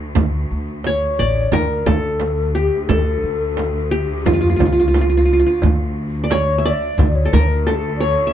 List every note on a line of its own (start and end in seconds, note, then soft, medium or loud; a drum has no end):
0.00 1.53 D2 medium
0.00 0.81 D5 medium
0.15 0.43 D2 medium
0.15 frame drum medium
0.15 darbuka dum medium
0.34 darbuka ka soft
0.51 1.05 D2 medium
0.51 darbuka ka soft
0.69 darbuka ka soft
0.84 1.55 C#5 medium
0.84 1.25 C#5 medium
0.84 darbuka tek medium
0.84 frame drum medium
1.19 1.46 A1 medium
1.19 2.18 D5 medium
1.19 darbuka ka soft
1.52 1.79 D2 medium
1.52 6.98 D2 medium
1.52 1.92 A#4 medium
1.52 1.88 A#4 medium
1.52 frame drum medium
1.52 darbuka dum loud
1.86 2.68 D2 medium
1.86 2.89 A4 medium
1.86 2.57 A4 medium
1.86 frame drum medium
1.86 darbuka dum loud
2.05 darbuka ka soft
2.20 darbuka tek medium
2.20 frame drum medium
2.55 3.80 G4 medium
2.55 2.89 G4 medium
2.55 darbuka ka soft
2.72 darbuka ka soft
2.89 3.16 D2 medium
2.89 4.06 A4 medium
2.89 3.93 A4 medium
2.89 frame drum medium
2.89 darbuka dum medium
3.23 4.04 D2 medium
3.23 darbuka ka soft
3.57 darbuka tek medium
3.57 frame drum medium
3.91 4.27 G4 medium
3.91 5.17 G4 medium
4.26 4.53 F2 loud
4.26 5.62 F4 medium
4.26 4.33 F4 medium
4.26 frame drum medium
4.26 darbuka dum medium
4.33 4.40 F4 medium
4.41 4.49 F4 medium
4.49 4.56 F4 soft
4.56 5.40 C#2 medium
4.56 4.65 F4 soft
4.56 darbuka dum medium
4.61 frame drum medium
4.66 4.72 F4 soft
4.72 4.79 F4 soft
4.77 4.87 F4 soft
4.77 darbuka ka soft
4.88 4.95 F4 soft
4.94 5.01 F4 soft
4.94 darbuka tek medium
4.94 frame drum medium
5.01 5.09 F4 soft
5.09 5.17 F4 soft
5.17 5.25 F4 medium
5.25 5.33 F4 soft
5.33 5.39 F4 medium
5.40 5.46 F4 medium
5.45 6.64 F4 medium
5.45 darbuka ka soft
5.62 6.70 D2 medium
5.62 darbuka dum medium
5.62 frame drum medium
5.96 darbuka ka soft
6.24 6.37 D5 medium
6.30 6.71 C#5 medium
6.30 6.65 C#5 medium
6.30 6.35 D5 medium
6.30 darbuka tek medium
6.30 frame drum medium
6.58 7.50 E5 medium
6.64 7.17 D5 loud
6.64 7.64 D5 medium
6.64 darbuka ka soft
6.98 7.25 D2 loud
6.98 8.33 D2 medium
6.98 darbuka dum loud
6.98 frame drum medium
7.15 7.34 C#5 medium
7.25 7.40 A4 medium
7.33 8.14 D2 loud
7.33 7.42 A#4 medium
7.33 7.73 A#4 medium
7.33 frame drum medium
7.33 darbuka dum medium
7.40 7.49 C#5 medium
7.48 7.70 A#4 medium
7.67 8.33 A4 medium
7.67 7.77 A4 medium
7.67 darbuka tek medium
7.67 frame drum medium
7.75 7.83 G4 medium
7.82 7.96 A4 medium
7.96 8.03 D5 medium
8.00 8.33 C#5 medium
8.00 darbuka ka soft
8.19 darbuka ka soft
8.27 8.33 E5 medium